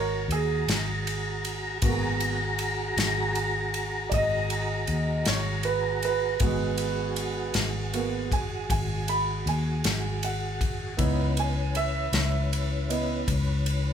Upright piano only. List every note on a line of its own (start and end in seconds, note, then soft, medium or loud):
0.00 1.79 G#3 soft
0.00 0.28 A#4 medium
0.00 0.30 C#5 medium
0.32 2.57 G#4 medium
1.82 2.33 A#3 soft
1.82 2.34 B3 soft
1.82 2.34 F#4 soft
4.10 4.14 D5 medium
4.14 5.24 D#5 medium
5.28 5.64 C#5 medium
5.65 6.02 B4 medium
6.05 7.53 B4 medium
6.41 10.95 G#3 soft
6.41 7.92 B3 soft
6.41 7.93 F#4 soft
7.93 8.28 A#3 soft
7.93 8.28 B3 soft
7.93 8.28 F#4 soft
8.33 8.70 G#5 medium
8.71 9.08 G#5 medium
9.09 9.46 B5 medium
9.49 10.22 G#5 medium
10.24 11.35 F#5 medium
10.97 11.49 B3 soft
10.97 11.49 D#4 soft
10.97 11.49 E4 soft
11.39 11.75 G#5 medium
11.77 13.24 E5 medium
12.89 13.24 B3 soft
12.89 13.24 E4 soft
12.89 13.24 D#5 soft